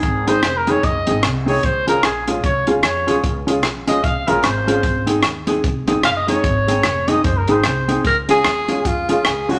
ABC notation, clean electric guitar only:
X:1
M:4/4
L:1/8
Q:"Swing" 1/4=150
K:Db
V:1 name="Clean electric guitar"
z [CEA] z [CEA] z [CEA] z [CEA] | z [DFA] z [DFA] z [DFA] z [DFA] | z [DFA] z [DFA] z [DFA] z [DFA] | z [CEA] z [CEA] z [CEA] z [CEA] |
z [CEA] z [CEA] z [CEA] z [CEA] | z [DFA] z [DFA] z [DFA] z [DFA] |]